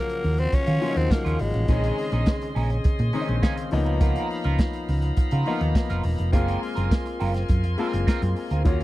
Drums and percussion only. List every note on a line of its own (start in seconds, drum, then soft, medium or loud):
0.09 closed hi-hat soft
0.24 open hi-hat medium
0.38 closed hi-hat soft
0.52 kick medium
0.52 closed hi-hat medium
0.67 closed hi-hat soft
0.81 open hi-hat soft
0.97 closed hi-hat soft
1.11 kick loud
1.11 snare loud
1.11 closed hi-hat medium
1.26 closed hi-hat medium
1.39 open hi-hat medium
1.54 closed hi-hat soft
1.68 kick loud
1.68 closed hi-hat medium
1.84 closed hi-hat soft
1.98 open hi-hat medium
2.12 closed hi-hat soft
2.26 kick loud
2.26 snare loud
2.26 closed hi-hat medium
2.41 closed hi-hat soft
2.56 open hi-hat medium
2.70 closed hi-hat soft
2.84 kick loud
2.84 closed hi-hat medium
2.99 closed hi-hat soft
3.13 open hi-hat medium
3.29 closed hi-hat soft
3.43 kick loud
3.43 snare loud
3.43 closed hi-hat medium
3.57 closed hi-hat medium
3.71 open hi-hat medium
3.86 closed hi-hat soft
4.01 kick loud
4.01 closed hi-hat medium
4.16 closed hi-hat soft
4.30 open hi-hat medium
4.44 closed hi-hat soft
4.58 kick loud
4.58 snare loud
4.58 closed hi-hat medium
4.73 closed hi-hat soft
4.88 open hi-hat medium
5.02 closed hi-hat soft
5.17 kick loud
5.17 closed hi-hat medium
5.31 closed hi-hat soft
5.46 open hi-hat soft
5.61 closed hi-hat soft
5.75 kick loud
5.75 snare loud
5.75 closed hi-hat medium
5.90 closed hi-hat medium
6.03 open hi-hat medium
6.18 closed hi-hat soft
6.33 kick loud
6.33 closed hi-hat medium
6.48 closed hi-hat medium
6.63 open hi-hat medium
6.77 closed hi-hat soft
6.91 kick loud
6.91 snare loud
6.91 closed hi-hat medium
7.06 closed hi-hat soft
7.20 open hi-hat medium
7.34 snare soft
7.34 closed hi-hat soft
7.48 kick loud
7.48 closed hi-hat medium
7.64 closed hi-hat soft
7.78 open hi-hat medium
7.93 closed hi-hat soft
8.08 kick loud
8.08 snare loud
8.08 closed hi-hat medium
8.22 closed hi-hat medium
8.36 open hi-hat medium
8.51 closed hi-hat soft
8.65 kick loud
8.65 closed hi-hat medium
8.81 closed hi-hat soft